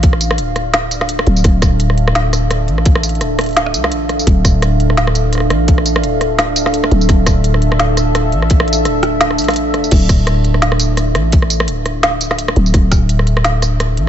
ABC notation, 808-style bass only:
X:1
M:4/4
L:1/8
Q:"Swing 16ths" 1/4=170
K:Dm
V:1 name="808-style bass" clef=bass
A,,,2 D,,,4- D,,, D,,, | D,,,6- D,,, A,,,- | A,,,2 D,,,3 C,, A,,,2 | D,,,6- D,,, A,,,- |
A,,,2 D,,,4- D,,, D,,, | D,,,6- D,,, A,,,- | A,,,2 D,,,3 A,,,2 F,,, | D,,,6- D,,, A,,,- |
A,,,2 D,,,4- D,,, D,,, | D,,,6- D,,, A,,, |]